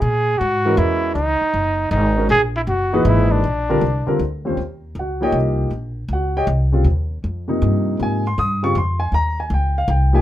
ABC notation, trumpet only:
X:1
M:3/4
L:1/8
Q:"Swing" 1/4=158
K:F#mix
V:1 name="Trumpet"
G2 F2 E2 | D4 D2 | G E F2 E =D- | =D4 z2 |
[K:Ebmix] z6 | z6 | z6 | z6 |
z6 |]